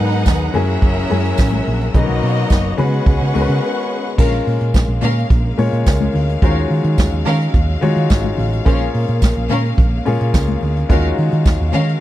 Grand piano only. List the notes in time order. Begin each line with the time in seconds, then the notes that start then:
Already playing: F#3 B3 D#4 G#4 A#4
0.54 F#3 A#3 C#4 E4 G#4
1.10 F#3 A#3 C#4 E4 G#4
1.94 F#3 B3 C#4 D#4 G#4
2.02 A#4
2.78 G#3 B3 C#4 F#4 B4
3.34 G#3 B3 C#4 F#4 A#4
3.42 B4
4.18 G#3 A#3 C#4 F4 A#4
5.58 G#3 A#3 C#4 F4 C#5
6.42 G#3 D#4 F4 F#4 C5
6.50 C#5
7.81 G#3 D#4 F4 F#4 C#5
8.65 A#3 C#4 F4 G#4 C5
8.73 C#5
10.05 A#3 C#4 F4 G#4 C#5
10.89 G#3 D#4 F4 F#4 C#5